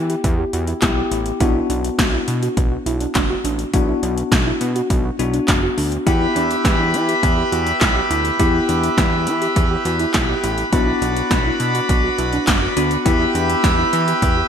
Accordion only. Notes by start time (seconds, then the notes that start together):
6.06 G4 B4 E5 B5
10.73 F#4 D5
13.06 G4 E5 B5